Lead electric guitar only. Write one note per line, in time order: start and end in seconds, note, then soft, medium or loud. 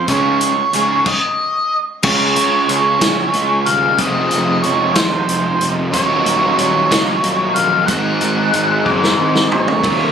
0.09 1.03 C#5 medium
1.07 1.76 D#5 medium
2.05 2.68 C#5 medium
2.69 3.70 C#5 medium
3.65 3.99 F5 medium
3.98 4.60 D#5 medium
4.62 4.95 C#5 medium
4.95 5.65 C5 medium
5.92 6.55 C#5 loud
6.56 7.58 C#5 medium
7.54 7.86 F5 loud
7.86 8.84 F#5 loud
8.85 9.47 C5 loud
8.85 9.55 D#5 medium
9.52 10.12 C#5 loud